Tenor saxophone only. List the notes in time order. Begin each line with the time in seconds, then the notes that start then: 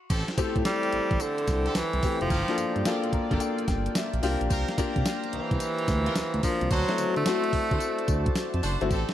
0.66 G3
1.21 D3
1.76 E3
2.21 F3
5.33 E3
6.43 F3
6.71 F#3
7.17 A3